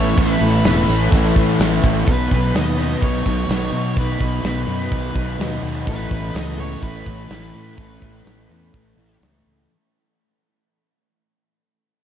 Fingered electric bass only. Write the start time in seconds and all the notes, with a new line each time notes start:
Already playing: A1
0.18 A1
0.41 A1
0.64 E1
0.88 A1
1.12 A1
1.36 A2
1.60 A1
1.83 A1
2.07 B1
2.31 B1
2.54 D#2
3.02 B1
3.26 B1
3.49 B1
3.72 B2
3.97 B1
4.20 B1
4.43 B1
4.67 F#2
4.92 B1
5.15 B1
5.39 D#2
5.63 D#2
5.87 A1
6.11 A1
6.35 C#2
6.82 A1
7.06 A1
7.30 A1
7.54 A2
7.78 A1
8.02 A1
8.25 A1
8.49 E2
8.74 A1
8.97 A1
9.22 C#2
9.46 C#2